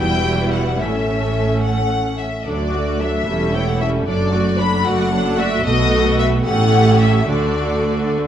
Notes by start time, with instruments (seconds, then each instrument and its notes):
Already playing: cello section E2, violin section F#4
0.00 double bass section E1, viola section G3 E4, violin section B4 G5
0.52 violin section F#5
0.79 double bass section A1, cello section A2, viola section A3 C#4, violin section C#4 A4 E5
1.62 violin section F#5
2.18 violin section E5
2.45 cello section D2, double bass section D2, viola section F#3 D4, violin section A4 D5
2.72 viola section A3 F#4, violin section F#4 D5
3.00 viola section F#3 D4, violin section A4 E5
3.26 double bass section E1, cello section E2, viola section G3 C#4, violin section E4 A4
3.53 viola section A3 E4, violin section G4 C#5 G5
3.69 violin section F#5
3.79 viola section G3 C#4, violin section E4 A4 E5
4.06 double bass section F#1, cello section F#2, viola section F#3 D4, violin section A4 D5
4.32 viola section A3 F#4, violin section F#4 D5
4.58 viola section F#3 D4, violin section A4 B5
4.85 double bass section F#1, cello section F#2, viola section A3 F#4, violin section F#4 D5 F#5
5.11 viola section F#3 D4, violin section A4
5.37 viola section A3 F#4, violin section F#4 D5 E5
5.64 double bass section B1, cello section B2, viola section A3 B3, violin section F#4 A4 D#5
6.19 violin section E5
6.45 double bass section A1, cello section A2, viola section A3 C#4, violin section G4 A4 F#5
7.02 violin section E5
7.30 double bass section D2, cello section D3, viola section A3 D4, violin section F#4 A4 D5
8.16 viola section A3